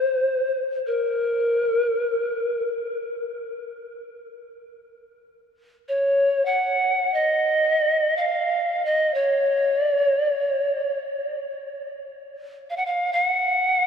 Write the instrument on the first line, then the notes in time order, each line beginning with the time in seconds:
pan flute
Already playing: C5
0.87 A#4
5.89 C#5
6.45 F#5
7.14 D#5
8.17 F5
8.85 D#5
9.14 C#5
9.80 D5
9.98 C#5
10.17 D5
10.35 C#5
12.70 F5
12.77 F#5
12.86 F5
13.13 F#5